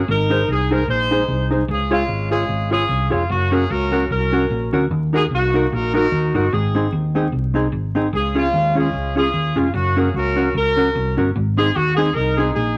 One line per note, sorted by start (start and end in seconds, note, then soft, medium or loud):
0.08 0.42 G#1 loud
0.08 0.85 D#4 medium
0.08 0.49 A#4 loud
0.30 0.41 D#4 medium
0.30 0.42 G#4 medium
0.30 0.42 C5 loud
0.48 0.82 C2 medium
0.48 0.70 G#4 loud
0.71 0.82 D#4 medium
0.71 0.82 G#4 medium
0.71 0.89 A#4 loud
0.71 0.83 C5 medium
0.88 1.22 A#1 medium
0.88 1.64 D#4 medium
0.88 1.65 G#4 medium
0.88 1.47 C5 loud
1.11 1.22 D#4 medium
1.11 1.23 G#4 medium
1.11 1.23 C5 medium
1.28 1.63 C2 medium
1.51 1.62 D#4 medium
1.51 1.63 G#4 medium
1.51 1.63 C5 medium
1.68 2.03 C#2 loud
1.68 1.90 C#4 medium
1.68 1.91 F4 medium
1.68 1.90 G#4 medium
1.91 2.68 G#3 medium
1.91 2.30 C#4 medium
1.91 2.02 F4 medium
1.91 2.29 F4 loud
1.91 2.02 G#4 loud
1.91 2.03 C#5 loud
2.08 2.43 G#1 medium
2.31 2.70 C#4 medium
2.31 2.42 F4 medium
2.31 2.70 F4 medium
2.31 2.69 G#4 medium
2.31 2.43 G#4 medium
2.31 2.43 C#5 medium
2.49 2.83 G#1 medium
2.71 3.26 C#4 medium
2.71 2.83 F4 medium
2.71 3.10 F4 medium
2.71 3.09 G#4 loud
2.71 2.83 G#4 medium
2.71 2.83 C#5 loud
2.89 3.08 C2 medium
3.10 3.27 F1 medium
3.10 3.22 F4 medium
3.10 3.29 F4 medium
3.10 3.23 G#4 medium
3.10 3.23 C#5 medium
3.30 3.64 F#1 loud
3.30 4.07 A#3 medium
3.30 3.69 C#4 medium
3.30 3.53 F#4 loud
3.52 3.63 C#4 medium
3.52 3.64 F#4 medium
3.52 3.70 G#4 loud
3.52 3.64 A#4 medium
3.69 4.04 C#2 loud
3.69 4.11 C#4 medium
3.69 4.10 F#4 medium
3.69 4.10 A#4 loud
3.92 4.03 C#4 medium
3.92 4.04 F#4 loud
3.92 4.04 A#4 medium
4.10 4.45 C2 loud
4.10 4.88 C#4 medium
4.10 4.88 F#4 medium
4.10 4.69 A#4 medium
4.32 4.44 C#4 medium
4.32 4.44 F#4 medium
4.32 4.44 A#4 medium
4.50 4.69 A#1 medium
4.73 4.88 D2 medium
4.73 4.84 C#4 medium
4.73 4.84 F#4 medium
4.73 4.85 A#4 medium
4.91 5.25 D#2 loud
5.13 5.24 D#4 medium
5.13 5.25 F#4 medium
5.13 5.23 G#4 loud
5.13 5.25 A#4 medium
5.31 5.65 C2 medium
5.31 6.09 A#3 medium
5.31 5.72 D#4 medium
5.31 5.70 F#4 loud
5.54 5.65 D#4 medium
5.54 5.66 F#4 medium
5.54 5.66 A#4 loud
5.72 6.06 A#1 medium
5.72 5.93 D#4 medium
5.72 5.93 F#4 medium
5.72 5.93 A#4 loud
5.94 6.05 D#4 loud
5.94 6.48 D#4 medium
5.94 6.34 F#4 medium
5.94 6.05 F#4 medium
5.94 6.31 A#4 loud
5.94 6.06 A#4 loud
6.12 6.31 D#2 loud
6.34 6.50 G1 medium
6.34 6.46 D#4 medium
6.34 6.46 F#4 medium
6.34 6.53 F#4 medium
6.34 6.46 A#4 medium
6.53 6.87 G#1 loud
6.53 7.29 C4 medium
6.53 7.29 D#4 medium
6.53 6.93 G#4 medium
6.75 6.86 C4 medium
6.75 6.86 D#4 medium
6.75 6.86 G#4 medium
6.92 7.27 D#2 loud
7.15 7.26 C4 medium
7.15 7.26 D#4 medium
7.15 7.27 G#4 loud
7.32 7.67 C2 medium
7.54 7.66 C4 medium
7.54 7.66 D#4 medium
7.54 7.67 G#4 loud
7.72 8.07 G#1 medium
7.95 8.06 C4 medium
7.95 8.07 D#4 loud
7.95 8.07 G#4 medium
8.13 8.47 C#2 loud
8.13 8.36 C#4 medium
8.13 8.36 F4 medium
8.13 8.34 G#4 medium
8.35 9.13 G#3 medium
8.35 8.46 C#4 medium
8.35 8.77 C#4 medium
8.35 8.47 F4 medium
8.35 8.74 F4 loud
8.35 8.47 G#4 loud
8.53 8.88 D#2 loud
8.75 8.87 C#4 medium
8.75 9.17 C#4 medium
8.75 8.87 F4 medium
8.75 9.17 F4 medium
8.75 8.88 G#4 medium
8.75 9.14 G#4 loud
8.93 9.28 C#2 medium
9.16 9.27 C#4 medium
9.16 9.71 C#4 medium
9.16 9.28 F4 medium
9.16 9.56 F4 medium
9.16 9.28 G#4 medium
9.16 9.54 G#4 loud
9.34 9.53 D#2 medium
9.56 9.71 F1 medium
9.56 9.67 C#4 medium
9.56 9.67 F4 medium
9.56 9.75 F4 medium
9.56 9.68 G#4 medium
9.74 10.08 F#1 loud
9.74 10.51 A#3 medium
9.74 10.14 C#4 medium
9.74 9.96 F#4 loud
9.96 10.08 C#4 medium
9.96 10.08 F#4 medium
9.96 10.15 G#4 loud
9.96 10.08 A#4 medium
10.14 10.48 C#2 medium
10.14 10.54 C#4 medium
10.14 10.55 F#4 medium
10.14 10.52 A#4 loud
10.36 10.48 C#4 medium
10.36 10.48 F#4 medium
10.36 10.48 A#4 medium
10.55 10.89 C#2 medium
10.55 11.31 C#4 medium
10.55 11.32 F#4 medium
10.55 11.14 A#4 loud
10.77 10.88 C#4 medium
10.77 10.88 F#4 medium
10.77 10.89 A#4 medium
10.95 11.14 C2 loud
11.17 11.32 G1 medium
11.17 11.28 C#4 medium
11.17 11.29 F#4 medium
11.17 11.29 A#4 medium
11.36 11.69 G#1 loud
11.57 11.69 C4 medium
11.57 11.69 D#4 loud
11.57 11.74 G#4 loud
11.57 11.69 G#4 loud
11.75 12.10 D#2 medium
11.75 11.97 F#4 loud
11.96 12.09 C4 medium
11.96 12.09 D#4 medium
11.96 12.13 G#4 loud
11.96 12.09 G#4 medium
12.14 12.50 C2 medium
12.14 12.78 D#4 medium
12.14 12.37 A#4 loud
12.37 12.49 C4 medium
12.37 12.50 D#4 medium
12.37 12.53 G#4 loud
12.37 12.50 G#4 loud
12.54 12.75 A#1 medium
12.54 12.76 G#4 loud